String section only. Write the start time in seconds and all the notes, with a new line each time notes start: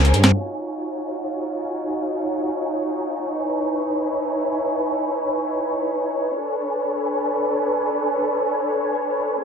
Already playing: C#4 G#4 A#4 C5
0.33 D#4 F4 F#4 C#5
3.34 E4 B4
6.36 D4 A4 B4
9.38 C#4 G#4 A#4 C5